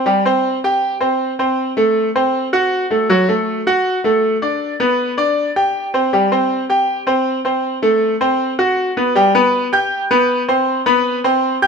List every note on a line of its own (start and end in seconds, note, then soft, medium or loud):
0.06 0.22 G3 medium
0.06 0.22 G4 medium
0.25 0.56 C4 medium
0.25 0.57 C5 medium
0.64 0.95 G4 medium
0.64 0.95 G5 medium
1.01 1.32 C4 medium
1.01 1.32 C5 medium
1.39 1.70 C4 medium
1.39 1.70 C5 medium
1.77 2.08 A3 medium
1.77 2.08 A4 medium
2.16 2.46 C4 medium
2.16 2.46 C5 medium
2.53 2.84 F#4 medium
2.53 2.84 F#5 medium
2.91 3.06 A3 medium
2.91 3.06 A4 medium
3.10 3.25 F#3 medium
3.10 3.25 F#4 medium
3.29 3.60 A3 medium
3.29 3.60 A4 medium
3.67 3.98 F#4 medium
3.67 3.98 F#5 medium
4.04 4.35 A3 medium
4.04 4.36 A4 medium
4.42 4.73 D4 medium
4.42 4.73 D5 medium
4.80 5.11 B3 medium
4.80 5.11 B4 medium
5.17 5.49 D4 medium
5.17 5.49 D5 medium
5.56 5.87 G4 medium
5.56 5.87 G5 medium
5.94 6.09 C4 medium
5.94 6.09 C5 medium
6.13 6.28 G3 medium
6.13 6.28 G4 medium
6.32 6.63 C4 medium
6.32 6.63 C5 medium
6.70 7.01 G4 medium
6.70 7.01 G5 medium
7.07 7.38 C4 medium
7.07 7.38 C5 medium
7.45 7.76 C4 medium
7.45 7.76 C5 medium
7.82 8.14 A3 medium
7.82 8.14 A4 medium
8.21 8.52 C4 medium
8.21 8.52 C5 medium
8.59 8.90 F#4 medium
8.59 8.90 F#5 medium
8.97 9.12 B3 medium
8.97 9.12 B4 medium
9.15 9.31 G3 medium
9.15 9.31 G4 medium
9.15 9.32 G5 medium
9.35 9.66 B3 medium
9.35 9.66 B4 medium
9.35 9.66 B5 medium
9.73 10.03 G4 medium
9.73 10.04 G5 medium
9.73 10.04 G6 medium
10.11 10.41 B3 medium
10.11 10.42 B4 medium
10.11 10.42 B5 medium
10.49 10.79 C4 medium
10.49 10.79 C5 medium
10.49 10.80 C6 medium
10.86 11.17 B3 medium
10.86 11.17 B4 medium
10.86 11.17 B5 medium
11.24 11.55 C4 medium
11.24 11.55 C5 medium
11.24 11.55 C6 medium
11.62 11.67 G4 medium
11.62 11.67 G5 medium
11.62 11.67 G6 medium